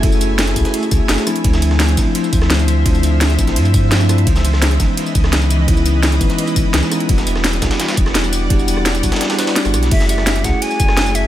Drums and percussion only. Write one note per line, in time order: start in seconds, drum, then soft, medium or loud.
0.03 kick loud
0.03 closed hi-hat medium
0.03 ride medium
0.12 tambourine soft
0.21 closed hi-hat medium
0.21 ride medium
0.21 tambourine medium
0.39 snare loud
0.39 closed hi-hat medium
0.39 ride medium
0.47 closed hi-hat soft
0.56 kick medium
0.56 closed hi-hat medium
0.56 ride medium
0.56 tambourine medium
0.65 snare soft
0.65 closed hi-hat soft
0.74 closed hi-hat medium
0.74 ride medium
0.83 ride soft
0.83 tambourine soft
0.91 kick loud
0.91 closed hi-hat medium
0.91 ride medium
0.91 tambourine medium
1.09 snare loud
1.09 closed hi-hat medium
1.09 ride medium
1.18 snare soft
1.18 tambourine soft
1.27 cross-stick soft
1.27 closed hi-hat medium
1.27 ride medium
1.27 tambourine medium
1.36 closed hi-hat soft
1.36 ride soft
1.44 kick loud
1.44 closed hi-hat medium
1.44 ride medium
1.53 snare medium
1.53 tambourine soft
1.62 closed hi-hat medium
1.62 ride medium
1.62 tambourine medium
1.71 cross-stick soft
1.71 snare soft
1.80 snare loud
1.80 closed hi-hat medium
1.80 ride medium
1.89 closed hi-hat soft
1.97 kick medium
1.97 snare soft
1.97 closed hi-hat medium
1.97 ride medium
1.97 tambourine medium
2.15 closed hi-hat medium
2.15 ride medium
2.24 tambourine soft
2.33 kick loud
2.33 closed hi-hat medium
2.33 ride medium
2.33 tambourine medium
2.42 cross-stick soft
2.42 snare soft
2.50 snare loud
2.50 closed hi-hat medium
2.50 ride medium
2.59 ride soft
2.59 tambourine soft
2.68 closed hi-hat medium
2.68 ride medium
2.68 tambourine medium
2.86 kick loud
2.86 closed hi-hat medium
2.86 ride medium
2.95 tambourine soft
3.03 closed hi-hat medium
3.03 ride medium
3.03 tambourine medium
3.21 snare loud
3.21 closed hi-hat medium
3.21 ride medium
3.30 closed hi-hat soft
3.39 kick medium
3.39 closed hi-hat medium
3.39 ride medium
3.39 tambourine medium
3.47 snare soft
3.47 closed hi-hat soft
3.56 closed hi-hat medium
3.56 ride medium
3.65 ride soft
3.65 tambourine soft
3.74 kick loud
3.74 closed hi-hat medium
3.74 ride medium
3.74 tambourine medium
3.91 snare loud
3.91 closed hi-hat medium
3.91 ride medium
4.00 snare soft
4.00 tambourine soft
4.09 cross-stick soft
4.09 closed hi-hat medium
4.09 ride medium
4.09 tambourine medium
4.18 closed hi-hat soft
4.18 ride soft
4.27 kick loud
4.27 closed hi-hat medium
4.27 ride medium
4.36 snare medium
4.36 tambourine soft
4.44 closed hi-hat medium
4.44 ride medium
4.44 tambourine medium
4.53 cross-stick soft
4.53 snare soft
4.62 snare loud
4.62 closed hi-hat medium
4.62 ride medium
4.71 closed hi-hat soft
4.80 kick medium
4.80 snare soft
4.80 closed hi-hat medium
4.80 ride medium
4.80 tambourine medium
4.97 closed hi-hat medium
4.97 ride medium
5.06 tambourine soft
5.15 kick loud
5.15 closed hi-hat medium
5.15 ride medium
5.15 tambourine medium
5.24 cross-stick soft
5.24 snare soft
5.33 snare loud
5.33 closed hi-hat medium
5.33 ride medium
5.42 ride soft
5.42 tambourine soft
5.50 closed hi-hat medium
5.50 ride medium
5.50 tambourine medium
5.68 kick loud
5.68 closed hi-hat medium
5.68 ride medium
5.77 tambourine soft
5.86 closed hi-hat medium
5.86 ride medium
5.86 tambourine medium
6.03 snare loud
6.03 closed hi-hat medium
6.03 ride medium
6.12 closed hi-hat soft
6.21 kick medium
6.21 closed hi-hat medium
6.21 ride medium
6.21 tambourine medium
6.30 snare soft
6.30 closed hi-hat soft
6.38 closed hi-hat medium
6.38 ride medium
6.47 ride soft
6.47 tambourine soft
6.56 kick loud
6.56 closed hi-hat medium
6.56 ride medium
6.56 tambourine medium
6.74 snare loud
6.74 closed hi-hat medium
6.74 ride medium
6.83 snare soft
6.83 tambourine soft
6.92 cross-stick soft
6.92 closed hi-hat medium
6.92 ride medium
6.92 tambourine medium
7.00 closed hi-hat soft
7.00 ride soft
7.09 kick loud
7.09 closed hi-hat medium
7.09 ride medium
7.18 snare medium
7.18 tambourine soft
7.27 closed hi-hat medium
7.27 ride medium
7.27 tambourine medium
7.36 cross-stick soft
7.36 snare soft
7.44 snare loud
7.44 closed hi-hat medium
7.44 ride medium
7.53 closed hi-hat soft
7.62 kick medium
7.62 snare loud
7.62 closed hi-hat medium
7.62 ride medium
7.62 tambourine medium
7.71 snare loud
7.71 ride medium
7.80 snare loud
7.80 closed hi-hat medium
7.80 ride medium
7.88 snare loud
7.88 ride medium
7.88 tambourine soft
7.97 kick loud
7.97 closed hi-hat medium
7.97 ride medium
7.97 tambourine medium
8.06 cross-stick soft
8.06 snare soft
8.15 snare loud
8.15 closed hi-hat medium
8.15 ride medium
8.24 ride soft
8.24 tambourine soft
8.32 closed hi-hat medium
8.32 ride medium
8.32 tambourine medium
8.50 kick loud
8.50 closed hi-hat medium
8.50 ride medium
8.59 tambourine soft
8.68 closed hi-hat medium
8.68 ride medium
8.68 tambourine medium
8.77 cross-stick soft
8.85 snare loud
8.85 closed hi-hat loud
8.85 ride medium
8.95 closed hi-hat soft
8.95 tambourine soft
9.03 kick medium
9.03 closed hi-hat medium
9.03 ride medium
9.03 tambourine medium
9.12 snare medium
9.12 closed hi-hat soft
9.12 ride medium
9.16 snare medium
9.16 ride medium
9.21 snare loud
9.21 closed hi-hat medium
9.21 ride medium
9.30 cross-stick soft
9.30 snare loud
9.30 ride medium
9.30 tambourine soft
9.39 snare loud
9.39 closed hi-hat medium
9.39 ride medium
9.39 tambourine medium
9.47 snare loud
9.47 ride medium
9.56 snare loud
9.56 closed hi-hat loud
9.56 ride soft
9.65 cross-stick soft
9.65 ride medium
9.65 tambourine soft
9.74 cross-stick soft
9.74 closed hi-hat medium
9.74 ride medium
9.74 tambourine medium
9.83 snare soft
9.83 closed hi-hat soft
9.91 kick loud
9.91 closed hi-hat medium
9.91 crash medium
9.91 ride medium
10.00 snare medium
10.00 tambourine soft
10.09 closed hi-hat medium
10.09 ride medium
10.09 tambourine medium
10.18 cross-stick soft
10.18 snare soft
10.27 snare loud
10.27 closed hi-hat loud
10.27 ride medium
10.36 closed hi-hat soft
10.44 kick medium
10.44 snare soft
10.44 closed hi-hat medium
10.44 ride medium
10.44 tambourine medium
10.62 closed hi-hat medium
10.62 ride medium
10.71 tambourine soft
10.80 kick loud
10.80 closed hi-hat medium
10.80 ride medium
10.80 tambourine medium
10.88 cross-stick medium
10.88 snare soft
10.97 snare loud
10.97 closed hi-hat medium
10.97 ride medium
11.06 ride soft
11.06 tambourine soft
11.15 closed hi-hat medium
11.15 ride medium
11.15 tambourine medium